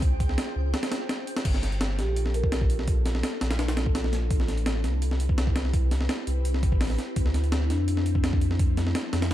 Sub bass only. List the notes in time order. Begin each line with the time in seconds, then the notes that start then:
Already playing: C#2
0.56 C#2
1.45 G1
1.99 A#1
3.42 A#1
4.31 A1
4.84 C2
6.27 C2
6.63 A1
7.16 D2
7.70 F2
9.13 F2